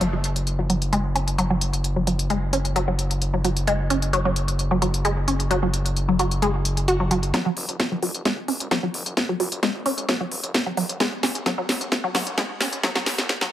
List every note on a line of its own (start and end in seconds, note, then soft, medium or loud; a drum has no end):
0.01 7.32 F#1 medium
0.01 0.07 F#3 loud
0.01 closed hi-hat medium
0.13 0.16 F#3 medium
0.24 closed hi-hat medium
0.36 closed hi-hat medium
0.47 closed hi-hat medium
0.59 0.64 F#3 medium
0.70 0.76 F#3 medium
0.70 closed hi-hat medium
0.82 closed hi-hat medium
0.93 1.01 G#3 loud
0.93 closed hi-hat medium
1.15 1.21 C#4 medium
1.15 closed hi-hat medium
1.28 closed hi-hat medium
1.38 1.44 F#3 loud
1.38 closed hi-hat medium
1.50 1.54 F#3 medium
1.61 closed hi-hat medium
1.73 closed hi-hat medium
1.84 closed hi-hat medium
1.96 2.02 F#3 medium
2.07 2.13 F#3 medium
2.07 closed hi-hat loud
2.19 closed hi-hat medium
2.30 2.39 G#3 loud
2.30 closed hi-hat medium
2.53 2.59 C#4 medium
2.53 closed hi-hat medium
2.65 closed hi-hat medium
2.76 2.82 F#3 loud
2.76 closed hi-hat medium
2.88 2.91 F#3 medium
2.99 closed hi-hat medium
3.11 closed hi-hat medium
3.22 closed hi-hat medium
3.34 3.39 F#3 medium
3.45 3.50 F#3 medium
3.45 closed hi-hat medium
3.57 closed hi-hat medium
3.67 3.76 G#3 loud
3.67 closed hi-hat medium
3.90 3.96 C#4 medium
3.90 closed hi-hat loud
4.02 closed hi-hat medium
4.13 4.19 F#3 loud
4.13 closed hi-hat medium
4.25 4.28 F#3 medium
4.36 closed hi-hat medium
4.48 closed hi-hat medium
4.59 closed hi-hat medium
4.71 4.76 F#3 medium
4.82 4.88 F#3 medium
4.82 closed hi-hat medium
4.94 closed hi-hat medium
5.05 5.14 G#3 loud
5.05 closed hi-hat medium
5.28 5.34 C#4 medium
5.28 closed hi-hat medium
5.40 closed hi-hat medium
5.51 5.56 F#3 loud
5.51 closed hi-hat medium
5.63 5.66 F#3 medium
5.74 closed hi-hat medium
5.86 closed hi-hat medium
5.96 closed hi-hat medium
6.08 6.14 F#3 medium
6.19 6.25 F#3 medium
6.19 closed hi-hat medium
6.31 closed hi-hat medium
6.42 6.51 G#3 loud
6.42 closed hi-hat medium
6.65 closed hi-hat medium
6.77 closed hi-hat medium
6.88 6.94 F#4 loud
6.88 closed hi-hat medium
7.00 7.05 F#3 medium
7.11 7.14 F#3 loud
7.11 closed hi-hat medium
7.23 closed hi-hat medium
7.34 7.40 F#3 loud
7.34 kick loud
7.34 snare soft
7.34 closed hi-hat medium
7.46 7.49 F#3 medium
7.57 7.65 F#1 loud
7.57 open hi-hat loud
7.69 7.76 F#1 medium
7.69 closed hi-hat medium
7.80 kick loud
7.80 snare soft
7.80 closed hi-hat medium
7.92 7.99 F#1 medium
7.92 7.97 F#3 medium
8.02 8.11 F#1 medium
8.02 8.08 F#3 medium
8.02 open hi-hat loud
8.15 8.22 F#1 medium
8.15 closed hi-hat medium
8.25 8.34 G#3 loud
8.25 kick loud
8.25 snare medium
8.25 closed hi-hat medium
8.48 8.57 E1 medium
8.48 8.54 C#4 medium
8.48 open hi-hat loud
8.60 8.68 F#1 medium
8.60 closed hi-hat medium
8.71 8.77 F#3 loud
8.71 kick loud
8.71 snare medium
8.71 closed hi-hat medium
8.83 8.86 F#3 medium
8.94 9.03 F#1 medium
8.94 open hi-hat loud
9.06 9.14 F#1 medium
9.06 closed hi-hat medium
9.17 kick loud
9.17 snare medium
9.17 closed hi-hat medium
9.29 9.34 F#3 medium
9.40 9.49 F#1 loud
9.40 9.46 F#3 medium
9.40 open hi-hat loud
9.52 9.60 F#1 medium
9.52 closed hi-hat medium
9.63 9.72 G#3 loud
9.63 kick loud
9.63 snare medium
9.63 closed hi-hat medium
9.75 9.83 F#1 medium
9.86 9.94 F#1 medium
9.86 9.92 C#4 medium
9.86 open hi-hat loud
9.98 10.06 F#1 medium
9.98 closed hi-hat medium
10.09 10.14 F#3 loud
10.09 kick loud
10.09 snare medium
10.09 closed hi-hat medium
10.21 10.24 F#3 medium
10.31 10.40 E1 medium
10.31 open hi-hat loud
10.44 10.51 F#1 medium
10.44 closed hi-hat medium
10.54 kick loud
10.54 snare medium
10.54 closed hi-hat medium
10.66 10.72 F#3 medium
10.77 10.86 F#1 medium
10.77 10.83 F#3 medium
10.77 open hi-hat loud
10.89 10.97 F#1 medium
10.89 closed hi-hat medium
11.00 11.09 G#3 loud
11.00 kick loud
11.00 snare medium
11.00 closed hi-hat medium
11.23 11.32 F#1 loud
11.23 11.29 C#4 medium
11.23 snare medium
11.23 open hi-hat loud
11.35 11.43 F#1 medium
11.35 closed hi-hat medium
11.46 11.52 F#3 loud
11.46 kick loud
11.46 snare medium
11.46 closed hi-hat medium
11.58 11.66 F#1 medium
11.58 11.61 F#3 medium
11.69 11.78 F#1 medium
11.69 snare medium
11.69 open hi-hat loud
11.81 11.89 F#1 medium
11.81 closed hi-hat medium
11.92 kick loud
11.92 snare medium
11.92 closed hi-hat medium
12.04 12.09 F#3 medium
12.15 12.23 E1 medium
12.15 12.21 F#3 medium
12.15 snare medium
12.15 open hi-hat loud
12.27 12.35 F#1 medium
12.27 closed hi-hat medium
12.38 12.46 G#3 loud
12.38 kick loud
12.38 snare medium
12.38 closed hi-hat medium
12.61 12.66 C#4 medium
12.61 snare medium
12.61 open hi-hat loud
12.73 12.80 F#1 medium
12.73 closed hi-hat medium
12.83 12.89 F#3 loud
12.83 kick loud
12.83 snare loud
12.83 closed hi-hat medium
12.95 12.99 F#3 medium
12.95 snare medium
13.06 snare loud
13.06 open hi-hat loud
13.18 13.26 F#1 medium
13.18 snare medium
13.18 closed hi-hat medium
13.29 kick loud
13.29 snare medium
13.29 closed hi-hat medium
13.41 13.47 F#3 medium
13.41 snare medium